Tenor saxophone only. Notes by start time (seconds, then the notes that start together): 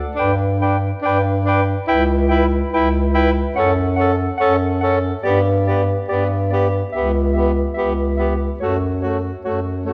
0.16 D4
0.60 D4
1.02 D4
1.45 D4
1.87 E4
2.30 E4
2.72 E4
3.14 E4
3.56 C#4
3.96 C#4
4.40 C#4
4.83 C#4
5.25 B3
5.68 B3
6.11 B3
6.52 B3
6.96 B3
7.36 B3
7.78 B3
8.18 B3
8.61 A3
9.04 A3
9.45 A3
9.85 A3